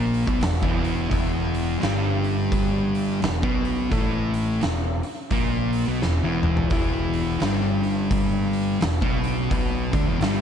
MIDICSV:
0, 0, Header, 1, 4, 480
1, 0, Start_track
1, 0, Tempo, 700117
1, 761, Time_signature, 4, 2, 24, 8
1, 7137, End_track
2, 0, Start_track
2, 0, Title_t, "Distorted electric guitar"
2, 0, Program_c, 0, 30
2, 0, Note_on_c, 0, 46, 85
2, 0, Note_on_c, 0, 58, 89
2, 179, Note_off_c, 0, 46, 0
2, 181, Note_off_c, 0, 58, 0
2, 187, Note_on_c, 0, 47, 95
2, 192, Note_on_c, 0, 59, 112
2, 275, Note_off_c, 0, 47, 0
2, 278, Note_off_c, 0, 59, 0
2, 278, Note_on_c, 0, 40, 74
2, 415, Note_off_c, 0, 40, 0
2, 423, Note_on_c, 0, 40, 102
2, 429, Note_on_c, 0, 52, 95
2, 751, Note_off_c, 0, 40, 0
2, 754, Note_off_c, 0, 52, 0
2, 759, Note_on_c, 0, 40, 87
2, 762, Note_on_c, 0, 52, 97
2, 1236, Note_off_c, 0, 40, 0
2, 1237, Note_off_c, 0, 52, 0
2, 1240, Note_on_c, 0, 43, 92
2, 1246, Note_on_c, 0, 55, 103
2, 2197, Note_off_c, 0, 43, 0
2, 2200, Note_off_c, 0, 55, 0
2, 2202, Note_on_c, 0, 40, 83
2, 2346, Note_on_c, 0, 47, 103
2, 2349, Note_off_c, 0, 40, 0
2, 2352, Note_on_c, 0, 59, 105
2, 2677, Note_off_c, 0, 47, 0
2, 2680, Note_off_c, 0, 59, 0
2, 2681, Note_on_c, 0, 45, 86
2, 2685, Note_on_c, 0, 57, 98
2, 3157, Note_off_c, 0, 45, 0
2, 3159, Note_off_c, 0, 57, 0
2, 3160, Note_on_c, 0, 40, 75
2, 3396, Note_off_c, 0, 40, 0
2, 3641, Note_on_c, 0, 46, 88
2, 3646, Note_on_c, 0, 58, 100
2, 4021, Note_off_c, 0, 46, 0
2, 4024, Note_on_c, 0, 47, 92
2, 4025, Note_off_c, 0, 58, 0
2, 4031, Note_on_c, 0, 59, 96
2, 4116, Note_off_c, 0, 47, 0
2, 4119, Note_off_c, 0, 59, 0
2, 4129, Note_on_c, 0, 40, 73
2, 4266, Note_off_c, 0, 40, 0
2, 4274, Note_on_c, 0, 40, 86
2, 4279, Note_on_c, 0, 52, 107
2, 4594, Note_off_c, 0, 40, 0
2, 4600, Note_off_c, 0, 52, 0
2, 4602, Note_on_c, 0, 40, 91
2, 4608, Note_on_c, 0, 52, 106
2, 5075, Note_off_c, 0, 40, 0
2, 5078, Note_on_c, 0, 43, 91
2, 5080, Note_off_c, 0, 52, 0
2, 5082, Note_on_c, 0, 55, 92
2, 6034, Note_off_c, 0, 43, 0
2, 6036, Note_off_c, 0, 55, 0
2, 6038, Note_on_c, 0, 40, 76
2, 6177, Note_on_c, 0, 47, 94
2, 6184, Note_on_c, 0, 59, 100
2, 6185, Note_off_c, 0, 40, 0
2, 6507, Note_off_c, 0, 47, 0
2, 6513, Note_off_c, 0, 59, 0
2, 6515, Note_on_c, 0, 47, 100
2, 6523, Note_on_c, 0, 59, 89
2, 6800, Note_off_c, 0, 47, 0
2, 6804, Note_off_c, 0, 59, 0
2, 6805, Note_on_c, 0, 50, 75
2, 6813, Note_on_c, 0, 62, 98
2, 6896, Note_off_c, 0, 50, 0
2, 6901, Note_off_c, 0, 62, 0
2, 6901, Note_on_c, 0, 40, 81
2, 6906, Note_on_c, 0, 52, 101
2, 6992, Note_off_c, 0, 40, 0
2, 6994, Note_off_c, 0, 52, 0
2, 6996, Note_on_c, 0, 43, 86
2, 7003, Note_on_c, 0, 55, 107
2, 7137, Note_off_c, 0, 43, 0
2, 7137, Note_off_c, 0, 55, 0
2, 7137, End_track
3, 0, Start_track
3, 0, Title_t, "Fingered electric bass"
3, 0, Program_c, 1, 33
3, 0, Note_on_c, 1, 34, 93
3, 160, Note_off_c, 1, 34, 0
3, 190, Note_on_c, 1, 35, 93
3, 276, Note_off_c, 1, 35, 0
3, 283, Note_on_c, 1, 28, 75
3, 417, Note_off_c, 1, 28, 0
3, 433, Note_on_c, 1, 28, 85
3, 742, Note_off_c, 1, 28, 0
3, 764, Note_on_c, 1, 28, 89
3, 1217, Note_off_c, 1, 28, 0
3, 1252, Note_on_c, 1, 31, 93
3, 2182, Note_off_c, 1, 31, 0
3, 2213, Note_on_c, 1, 28, 80
3, 2345, Note_off_c, 1, 28, 0
3, 2354, Note_on_c, 1, 35, 96
3, 2663, Note_off_c, 1, 35, 0
3, 2688, Note_on_c, 1, 33, 94
3, 3139, Note_off_c, 1, 33, 0
3, 3164, Note_on_c, 1, 28, 77
3, 3435, Note_off_c, 1, 28, 0
3, 3643, Note_on_c, 1, 34, 93
3, 4002, Note_off_c, 1, 34, 0
3, 4028, Note_on_c, 1, 35, 85
3, 4117, Note_off_c, 1, 35, 0
3, 4126, Note_on_c, 1, 28, 82
3, 4261, Note_off_c, 1, 28, 0
3, 4270, Note_on_c, 1, 28, 90
3, 4581, Note_off_c, 1, 28, 0
3, 4602, Note_on_c, 1, 28, 97
3, 5055, Note_off_c, 1, 28, 0
3, 5081, Note_on_c, 1, 31, 88
3, 6013, Note_off_c, 1, 31, 0
3, 6045, Note_on_c, 1, 28, 78
3, 6179, Note_off_c, 1, 28, 0
3, 6187, Note_on_c, 1, 35, 98
3, 6497, Note_off_c, 1, 35, 0
3, 6525, Note_on_c, 1, 35, 97
3, 6793, Note_off_c, 1, 35, 0
3, 6810, Note_on_c, 1, 38, 92
3, 6898, Note_off_c, 1, 38, 0
3, 6906, Note_on_c, 1, 28, 89
3, 6991, Note_off_c, 1, 28, 0
3, 6995, Note_on_c, 1, 31, 105
3, 7137, Note_off_c, 1, 31, 0
3, 7137, End_track
4, 0, Start_track
4, 0, Title_t, "Drums"
4, 96, Note_on_c, 9, 46, 60
4, 165, Note_off_c, 9, 46, 0
4, 188, Note_on_c, 9, 36, 91
4, 257, Note_off_c, 9, 36, 0
4, 282, Note_on_c, 9, 46, 86
4, 293, Note_on_c, 9, 38, 118
4, 351, Note_off_c, 9, 46, 0
4, 362, Note_off_c, 9, 38, 0
4, 430, Note_on_c, 9, 36, 111
4, 498, Note_off_c, 9, 36, 0
4, 579, Note_on_c, 9, 46, 62
4, 648, Note_off_c, 9, 46, 0
4, 764, Note_on_c, 9, 36, 91
4, 766, Note_on_c, 9, 46, 73
4, 832, Note_off_c, 9, 36, 0
4, 834, Note_off_c, 9, 46, 0
4, 1059, Note_on_c, 9, 46, 64
4, 1128, Note_off_c, 9, 46, 0
4, 1246, Note_on_c, 9, 46, 70
4, 1257, Note_on_c, 9, 38, 105
4, 1314, Note_off_c, 9, 46, 0
4, 1325, Note_off_c, 9, 38, 0
4, 1536, Note_on_c, 9, 46, 49
4, 1605, Note_off_c, 9, 46, 0
4, 1727, Note_on_c, 9, 36, 107
4, 1731, Note_on_c, 9, 46, 69
4, 1796, Note_off_c, 9, 36, 0
4, 1800, Note_off_c, 9, 46, 0
4, 2021, Note_on_c, 9, 46, 58
4, 2090, Note_off_c, 9, 46, 0
4, 2209, Note_on_c, 9, 46, 80
4, 2220, Note_on_c, 9, 38, 126
4, 2278, Note_off_c, 9, 46, 0
4, 2289, Note_off_c, 9, 38, 0
4, 2353, Note_on_c, 9, 36, 111
4, 2421, Note_off_c, 9, 36, 0
4, 2502, Note_on_c, 9, 46, 55
4, 2571, Note_off_c, 9, 46, 0
4, 2684, Note_on_c, 9, 46, 71
4, 2685, Note_on_c, 9, 36, 96
4, 2753, Note_off_c, 9, 36, 0
4, 2753, Note_off_c, 9, 46, 0
4, 2974, Note_on_c, 9, 46, 66
4, 3043, Note_off_c, 9, 46, 0
4, 3162, Note_on_c, 9, 46, 77
4, 3173, Note_on_c, 9, 38, 100
4, 3231, Note_off_c, 9, 46, 0
4, 3242, Note_off_c, 9, 38, 0
4, 3451, Note_on_c, 9, 46, 54
4, 3519, Note_off_c, 9, 46, 0
4, 3638, Note_on_c, 9, 46, 80
4, 3640, Note_on_c, 9, 36, 97
4, 3706, Note_off_c, 9, 46, 0
4, 3709, Note_off_c, 9, 36, 0
4, 3928, Note_on_c, 9, 46, 64
4, 3997, Note_off_c, 9, 46, 0
4, 4129, Note_on_c, 9, 38, 67
4, 4198, Note_off_c, 9, 38, 0
4, 4409, Note_on_c, 9, 45, 87
4, 4478, Note_off_c, 9, 45, 0
4, 4504, Note_on_c, 9, 43, 90
4, 4573, Note_off_c, 9, 43, 0
4, 4595, Note_on_c, 9, 46, 74
4, 4600, Note_on_c, 9, 36, 103
4, 4664, Note_off_c, 9, 46, 0
4, 4668, Note_off_c, 9, 36, 0
4, 4892, Note_on_c, 9, 46, 61
4, 4961, Note_off_c, 9, 46, 0
4, 5075, Note_on_c, 9, 46, 72
4, 5086, Note_on_c, 9, 38, 94
4, 5143, Note_off_c, 9, 46, 0
4, 5154, Note_off_c, 9, 38, 0
4, 5371, Note_on_c, 9, 46, 53
4, 5440, Note_off_c, 9, 46, 0
4, 5558, Note_on_c, 9, 46, 68
4, 5559, Note_on_c, 9, 36, 110
4, 5627, Note_off_c, 9, 46, 0
4, 5628, Note_off_c, 9, 36, 0
4, 5850, Note_on_c, 9, 46, 58
4, 5919, Note_off_c, 9, 46, 0
4, 6039, Note_on_c, 9, 46, 78
4, 6050, Note_on_c, 9, 38, 119
4, 6107, Note_off_c, 9, 46, 0
4, 6118, Note_off_c, 9, 38, 0
4, 6185, Note_on_c, 9, 36, 107
4, 6253, Note_off_c, 9, 36, 0
4, 6333, Note_on_c, 9, 46, 57
4, 6401, Note_off_c, 9, 46, 0
4, 6521, Note_on_c, 9, 36, 105
4, 6523, Note_on_c, 9, 46, 64
4, 6589, Note_off_c, 9, 36, 0
4, 6592, Note_off_c, 9, 46, 0
4, 6810, Note_on_c, 9, 36, 116
4, 6813, Note_on_c, 9, 46, 59
4, 6878, Note_off_c, 9, 36, 0
4, 6881, Note_off_c, 9, 46, 0
4, 6999, Note_on_c, 9, 46, 68
4, 7010, Note_on_c, 9, 38, 97
4, 7068, Note_off_c, 9, 46, 0
4, 7079, Note_off_c, 9, 38, 0
4, 7137, End_track
0, 0, End_of_file